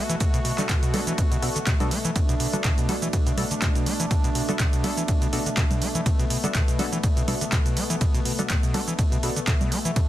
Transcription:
Already playing: B2 A3 F#4
0.09 E3, closed hi-hat, shaker
0.20 B2, kick, closed hi-hat, ride, shaker
0.34 B2, closed hi-hat, shaker
0.45 B2, open hi-hat
0.58 D3 B3 D4 F#4 A4, clap, closed hi-hat, low conga, shaker
0.69 B2, kick, clap, closed hi-hat, ride, shaker
0.83 B2, closed hi-hat, shaker
0.94 A3 B3 D4 F#4 A4, open hi-hat, low conga
1.07 E3, closed hi-hat, shaker
1.18 B2, kick, closed hi-hat, ride, shaker
1.31 B2, closed hi-hat, shaker
1.42 B2 B3 D4 F#4 A4, open hi-hat
1.56 D3, closed hi-hat, shaker
1.67 B2, kick, clap, closed hi-hat, ride, shaker
1.80 B2 B3 D4 F#4 A4, closed hi-hat, low conga, shaker
1.91 A3, open hi-hat
2.05 E3, closed hi-hat, shaker
2.16 B2 D4, kick, closed hi-hat, ride, shaker
2.29 B2, closed hi-hat, shaker
2.40 B2, open hi-hat
2.53 D3 B3 D4 F#4 A4, closed hi-hat, low conga, shaker
2.64 B2, kick, clap, closed hi-hat, ride, shaker
2.78 B2, closed hi-hat, shaker
2.89 A3 B3 D4 F#4 A4, open hi-hat, low conga
3.02 E3, closed hi-hat, shaker
3.13 B2, kick, closed hi-hat, ride, shaker
3.27 B2, closed hi-hat, shaker
3.38 B2 B3 D4 F#4 A4, open hi-hat, low conga
3.51 D3, closed hi-hat, shaker
3.62 B2, kick, clap, closed hi-hat, ride, shaker
3.75 B2, closed hi-hat, shaker
3.86 A3, open hi-hat
4.00 E3, shaker
4.11 B2, kick, closed hi-hat, ride, shaker
4.24 B2, closed hi-hat, shaker
4.35 B2, open hi-hat
4.49 D3 B3 D4 F#4 A4, closed hi-hat, low conga, shaker
4.60 B2, kick, clap, closed hi-hat, ride, shaker
4.73 B2, closed hi-hat, shaker
4.84 A3 B3 D4 F#4 A4, open hi-hat, low conga
4.97 E3, closed hi-hat, shaker
5.08 B2, kick, closed hi-hat, ride, shaker
5.22 B2, closed hi-hat, shaker
5.33 B2 B3 D4 F#4 A4, open hi-hat
5.46 D3, closed hi-hat, shaker
5.57 B2, kick, clap, closed hi-hat, ride, shaker
5.71 B2, closed hi-hat, low conga, shaker
5.82 A3, open hi-hat
5.95 E3, closed hi-hat, shaker
6.06 B2 B3, kick, closed hi-hat, ride, shaker
6.19 B2, closed hi-hat, shaker
6.30 B2, open hi-hat
6.44 D3 B3 D4 F#4 A4, closed hi-hat, low conga, shaker
6.55 B2, kick, clap, closed hi-hat, ride, shaker
6.68 B2, closed hi-hat, shaker
6.79 A3 B3 D4 F#4 A4, open hi-hat, low conga
6.92 E3, closed hi-hat, shaker
7.03 B2, kick, closed hi-hat, ride, shaker
7.17 B2, closed hi-hat, shaker
7.28 B2 B3 D4 F#4 A4, open hi-hat, low conga
7.41 D3, closed hi-hat, shaker
7.52 B2, kick, clap, closed hi-hat, ride, shaker
7.66 B2, closed hi-hat, shaker
7.77 A3, open hi-hat
7.90 E3, closed hi-hat, shaker
8.01 B2, kick, closed hi-hat, ride, shaker
8.14 B2, closed hi-hat, shaker
8.25 B2, open hi-hat
8.39 D3 B3 D4 F#4 A4, low conga, shaker
8.50 B2, kick, clap, closed hi-hat, ride, shaker
8.63 B2, closed hi-hat, shaker
8.74 A3 B3 D4 F#4 A4, open hi-hat, low conga
8.88 E3, closed hi-hat, shaker
8.99 B2, kick, closed hi-hat, ride, shaker
9.12 B2, closed hi-hat, shaker
9.23 B2 B3 D4 F#4 A4, open hi-hat
9.36 D3, closed hi-hat, shaker
9.47 B2, kick, clap, closed hi-hat, ride, shaker
9.61 B2, closed hi-hat, low conga, shaker
9.72 A3, open hi-hat
9.85 E3, closed hi-hat, shaker
9.96 B2 D4, kick, closed hi-hat, ride, shaker

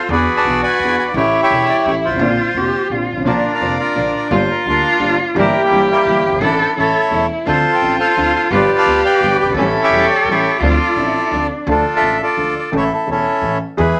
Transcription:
Already playing: F4
0.09 E2 E3 B3 D4 F#4 G#4 B4 D5
0.37 D5 A5
0.45 B1 B2 E3 B3 D4 G#4
0.63 B4 D5 G#5
0.79 E2 E3 B3 D4
0.84 G#4
0.99 G#5
1.08 D5
1.14 A1 A2 E3 A3 C#4 E4 G4 C#5
1.43 G4 C#5 E5
1.50 E1 E2 E3 A3 C#4 G4
1.69 D5
1.86 A1 A2 E3 A3 C#4 G4 C#5
2.05 G1 F4 C5
2.09 G1 G#1
2.14 G#1 A1
2.19 A#1 A#2 D3 A#3 C4 F4
2.54 F1 F2 D3 A#3 C4 F4 G4
2.90 A#1 A#2 D3 A#3 C4 F4
3.13 G1 G#1
3.18 G#1 A1
3.22 A1 A#1 A#2 D3 F3 A#3 D4 F4
3.27 A#1 D4 F4 A#4
3.54 A#4 D5 F5
3.60 F1 F2 D3 F3 A#3 D4 F4
3.80 F4 A#4 D5
3.95 A#1 A#2 D3 F3 A#3 D4 F4
4.17 D5
4.30 G1 G2 D3 G3 A#3 F4
4.35 C5
4.50 A#4
4.65 D2 D3 G3 A#3 D4 F4
4.69 A#4
4.99 G1 G2 D3 G3 A#3 F4
5.34 G1 G2 E3 G3 A#3 E4 G4
5.39 G4 A#4
5.64 G3 A#3 E4
5.71 G1 G2 E3 G3 A#3 E4 G4
5.91 A#3 E4 G4
6.05 G1 G2 E3 G3 A#3 E4
6.26 F#1 G4
6.31 G1
6.36 G#1
6.40 A1 A2 E3 A3 D4 E4 A4
6.61 C5
6.76 A1 A2 E3 A3 C#4 E4 A4
6.80 C#5
7.11 E1 E2 E3 A3 C#4 E4 A4
7.45 D2 D3 F3 C4 D4 F4 A4 C5
7.73 C5 G5
7.81 A1 A2 F3 C4 D4 F4 A4
7.99 A4 C5 F5
8.15 D2 D3 F3 C4 D4 F4 A4
8.36 F5
8.50 G1 G2 F3 G3 B3 D4 F4 G4 B4 D5
8.78 D5 F5 A5
8.85 D2 D3 F3 G3 B3 D4 F4 G4
9.05 B4 D5 G5
9.21 G1 G2 F3 G3 B3 D4 F4 G4
9.40 F#1 G5
9.45 F#1 G1
9.49 G1 G#1
9.54 G#1 A1 G3 A3 C#4 E4 A4
9.58 A1 A2 E3 A3 C#4 G4
9.83 G4 C#5 E5
9.89 E1 G3 A3 C#4
9.93 E1 E2 E3 A3 G4
10.10 D5
10.24 A1 G3 A3 C#4
10.29 A1 A2 E3 A3 C#4 E4 G4 C#5
10.56 E5
10.60 D2 D3 F3 C4 D4 F4 A4
10.65 A4 D5
10.96 A1 A2 F3 C4 D4 E4 A4
11.31 D2 D3 F3 C4 D4
11.35 A4
11.67 D2 D3 F3 A3 D4 F4 A4
11.71 A4
11.96 A4 E5
12.01 A1 A2 F3 A3 D4 A4
12.22 F4 A4 D5
12.37 D2 D3 F3 A3 D4 A4
12.59 D5
12.72 A1 A2 E3 A3 C#4 A4
12.77 E4 A4 C#5
12.94 A4
13.06 E1 E2 E3 A3 C#4 A4
13.11 C#4 E4 A4
13.42 A1 A2 E3 A3 C#4 A4
13.77 E2 E3 G#3 B3 E4 G#4 B4

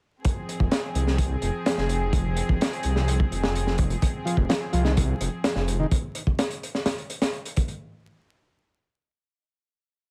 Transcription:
0.24 F3 C4 G#4, kick, closed hi-hat
0.49 closed hi-hat
0.60 F1, kick
0.71 snare, closed hi-hat
0.95 C2, closed hi-hat
1.07 snare
1.18 kick, closed hi-hat
1.42 F1, closed hi-hat
1.66 snare, closed hi-hat
1.78 F1, snare
1.89 closed hi-hat
2.13 kick, closed hi-hat
2.37 closed hi-hat
2.49 F1, kick
2.61 snare, closed hi-hat
2.73 closed hi-hat
2.83 C2, closed hi-hat
2.96 snare
3.08 closed hi-hat
3.20 kick
3.32 F1, closed hi-hat
3.44 snare
3.56 closed hi-hat
3.67 snare
3.78 kick, closed hi-hat
3.90 closed hi-hat
4.02 kick, closed hi-hat
4.25 F3, closed hi-hat
4.37 F1, kick
4.49 F3, snare, closed hi-hat
4.73 C2 F3, closed hi-hat
4.85 D#3, snare
4.97 kick, closed hi-hat
5.21 F1, closed hi-hat
5.44 snare, closed hi-hat
5.56 F1, snare
5.68 closed hi-hat
5.79 D#3
5.91 kick, closed hi-hat
6.15 closed hi-hat
6.27 kick
6.39 snare, closed hi-hat
6.51 closed hi-hat
6.63 closed hi-hat
6.75 snare
6.86 snare, closed hi-hat
6.98 closed hi-hat
7.10 closed hi-hat
7.22 snare, closed hi-hat
7.33 closed hi-hat
7.45 closed hi-hat
7.57 kick, closed hi-hat
7.68 closed hi-hat

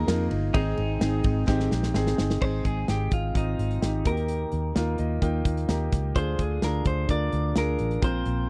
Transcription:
Already playing: D#3 A#3 D#4 F4 G#4 A#4
0.07 F2 F3 A#3 D#4 F4 A#4, snare, ride
0.30 G1 A#3 D#4 A#4, ride
0.53 G#1 G#2 D#3 G#3 C4 D#4 G#4, kick, ride
0.77 G#1 G#3 C4 D#4 G#4, ride
1.00 G#1 G#3 C4 D#4 G#4, snare, ride
1.23 G#1 G#3 C4 D#4 G#4, kick, ride
1.47 G#1 G#2 D#3 G#3 C4 D#4 G4 G#4, kick, snare
1.60 snare
1.71 A#1 G#3 C4 D#4 G#4, snare
1.83 snare
1.94 G#1 G#3 C4 D#4 G#4, snare
2.07 snare
2.18 G1 G#3 C4 D#4 G#4, snare
2.30 snare
2.41 G#1 G#2 C4 D#4 G#4 C5, kick, crash
2.65 G#1 G#4, kick, closed hi-hat
2.88 G#1 C4 D#4 G4 G#4, snare, closed hi-hat
3.11 G#1 F4, kick, closed hi-hat
3.34 G#1 C4 D#4 F4, kick, closed hi-hat
3.59 G#1, closed hi-hat
3.71 closed hi-hat
3.81 G#1 C4 D#4 G4, snare, closed hi-hat
4.05 D#2 D#3 A#3 D#4 F#4 A#4, kick, closed hi-hat
4.12 G4
4.17 closed hi-hat
4.28 closed hi-hat
4.52 D#2, closed hi-hat
4.75 D#2 A#3 D#4 F4, snare, closed hi-hat
4.98 D#2 D#5, closed hi-hat
5.22 D#2 A#3 D#4 F4 G5, kick, closed hi-hat
5.45 D#2, kick, closed hi-hat
5.57 closed hi-hat
5.68 D#2 A#3 D#4 G4 A#5, snare, closed hi-hat
5.92 C#2, kick, snare, closed hi-hat
6.15 D2 D3 D4 F4 G#4 C5, kick, closed hi-hat
6.39 D2 G#4, kick, closed hi-hat
6.62 D2 D4 F4 G#4 A#4, snare, closed hi-hat
6.85 D2 C5, kick, closed hi-hat
7.09 D2 D4 F4 A#4 D5, kick, closed hi-hat
7.32 D2, closed hi-hat
7.55 D2 D4 F4 G#4 A#4, snare, closed hi-hat
7.79 A1, closed hi-hat
7.91 closed hi-hat
8.02 A#1 A#2 C4 F4 A#4 C5, kick, closed hi-hat
8.26 A#1, closed hi-hat

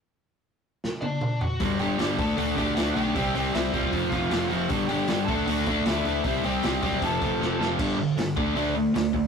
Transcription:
0.84 snare
1.01 D4 D5, high tom
1.21 mid tom
1.41 F#4 F#5, floor tom
1.60 G1 G2 D3 G3, kick, open hi-hat
1.79 G1 G2 D3 G3 G4 G5, open hi-hat
1.98 G1 G2 D3 G3, snare, open hi-hat
2.18 D2 D3 A3 D4 A4 A5, kick, open hi-hat
2.37 D2 D3 A3 D4 F#4 F#5, open hi-hat
2.56 D2 D3 A3 D4 G4 G5, kick, open hi-hat
2.75 D2 D3 A3 D4 F#4 F#5, snare, open hi-hat
2.94 B1 D3 A3 D4 G4 G5, open hi-hat
3.15 C2 C3 G3 C4, kick, open hi-hat
3.34 C2 C3 G3 C4, open hi-hat
3.40 G4 G5
3.53 C2 C3 G3 C4 E4 E5, snare, open hi-hat
3.70 C2 C3 G3 C4 F4 E5, kick, open hi-hat
3.81 F5, kick
3.92 F1 F2 C3 F3, kick, open hi-hat
4.09 F1 F2 C3 F3 F4 F5, kick, open hi-hat
4.31 F1 F2 C3 F3, snare, open hi-hat
4.49 F1 F2 C3 F3 F#4 F#5, open hi-hat
4.69 G1 G2 D3 G3, kick, open hi-hat
4.88 G1 G2 D3 G3 G4 G5, open hi-hat
5.08 G1 G2 D3 G3, snare, open hi-hat
5.25 D2 D3 A3 D4 A4 A5, kick, open hi-hat
5.47 D2 D3 A3 D4 F#4 F#5, open hi-hat
5.66 D2 D3 A3 D4, kick, open hi-hat
5.86 D2 D3 A3 D4 E4 E5, snare, open hi-hat
6.05 D2 D3 A3 D4, open hi-hat
6.24 C2 C3 G3 C4 E4 E5, kick, open hi-hat
6.44 C2 C3 G3 C4 G4 G5, open hi-hat
6.63 C2 C3 G3 C4, snare, open hi-hat
6.82 F#2 C3 G3 C4 G4 G5, kick, open hi-hat
6.92 kick
7.01 F1 F2 C3 F3 A4 A5, kick, open hi-hat
7.20 F1 F2 C3 F3, kick, open hi-hat
7.40 F1 F2 C3 F3, snare
7.59 F1 F2 C3 F3, snare
7.79 G1 G2 D3 G3, kick, crash
7.99 G2 D3
8.17 G1 G2 D3, snare, open hi-hat
8.36 D2 D3 A3 D4, kick
8.55 D2 D3 A3 D4, open hi-hat
8.75 D3 A3
8.94 D2 D3 A3, snare, open hi-hat
9.13 D2 D3 A3, kick

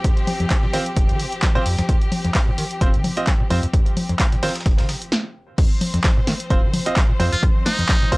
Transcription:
Already playing: F3 C4 G4
0.04 F2, kick, closed hi-hat
0.17 closed hi-hat
0.27 closed hi-hat, open hi-hat, low conga
0.40 F2, closed hi-hat, low conga
0.50 F3, kick, snare, clap, closed hi-hat
0.63 A#2, snare
0.73 D#3 C4 F4 C5, snare, closed hi-hat, open hi-hat
0.86 closed hi-hat
0.97 F1, kick, closed hi-hat
1.09 F3, closed hi-hat
1.19 C3, closed hi-hat, open hi-hat
1.32 closed hi-hat
1.42 F3, kick, snare, clap, closed hi-hat
1.55 A#2 C4 F4 C5, snare
1.66 F2, snare, closed hi-hat, open hi-hat
1.78 F2, snare, closed hi-hat, low conga
1.89 F2, kick, closed hi-hat
2.02 closed hi-hat
2.12 closed hi-hat, open hi-hat, low conga
2.25 F2, snare, closed hi-hat, low conga
2.34 F3, kick, snare, clap, closed hi-hat, open hi-hat
2.48 A#2
2.58 D#3, closed hi-hat, open hi-hat
2.71 closed hi-hat
2.81 F1 C4 F4 C5, kick, closed hi-hat
2.94 F3, closed hi-hat
3.04 C3, closed hi-hat, open hi-hat, low conga
3.17 C4 F4 D#5, closed hi-hat
3.27 F3, kick, snare, clap, closed hi-hat
3.40 A#2
3.50 F2 C4 F4 C5, closed hi-hat, open hi-hat, low conga
3.63 F2, closed hi-hat
3.73 F2, kick, closed hi-hat
3.86 closed hi-hat
3.97 closed hi-hat, open hi-hat, low conga
4.09 F2, closed hi-hat, low conga
4.19 F3, kick, snare, clap, closed hi-hat
4.32 A#2, snare, closed hi-hat
4.43 D#3 C4 F4 C5, snare, open hi-hat
4.49 snare, open hi-hat
4.55 snare, closed hi-hat, open hi-hat
4.61 snare, open hi-hat
4.66 F1, kick, snare, closed hi-hat, open hi-hat
4.78 F3, snare, closed hi-hat, open hi-hat
4.89 C3, snare, open hi-hat
5.02 closed hi-hat
5.12 snare
5.58 F2 F3 C4 C5, kick, closed hi-hat, crash
5.81 closed hi-hat, open hi-hat, low conga
5.94 F2, snare, closed hi-hat, low conga
6.04 F3, kick, snare, clap, closed hi-hat, open hi-hat
6.17 A#2
6.27 D#3, snare, closed hi-hat, open hi-hat
6.40 closed hi-hat
6.50 F1 C4 F4 C5, kick, closed hi-hat
6.63 F3
6.74 C3, closed hi-hat, open hi-hat, low conga
6.86 C4 F4 D#5, closed hi-hat
6.96 F3, kick, snare, clap, closed hi-hat
7.09 A#2
7.20 F2 C4 F4 C5, closed hi-hat, open hi-hat, low conga
7.32 F2 F4, closed hi-hat
7.43 F2, kick, closed hi-hat
7.66 D#4, snare, closed hi-hat, open hi-hat, low conga
7.79 F2, closed hi-hat, low conga
7.89 F3, kick, snare, clap, closed hi-hat
8.02 A#2, snare
8.12 D#3 C4 F4 C5, kick, closed hi-hat, open hi-hat

